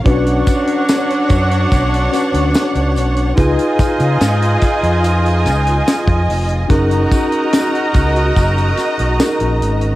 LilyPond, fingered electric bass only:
\new Staff \with { instrumentName = "Fingered electric bass" } { \clef bass \time 4/4 \key fis \major \tempo 4 = 72 b,,8 r4 fis,8 b,,8 r16 d,16 r16 cis,16 b,,8 | cis,16 r8 cis16 gis,8 r16 eis,8. cis,8 r16 eis,16 eis,,8 | fis,,8 r4 cis,8 fis,,8 r16 b,,16 r16 ais,,16 gis,,8 | }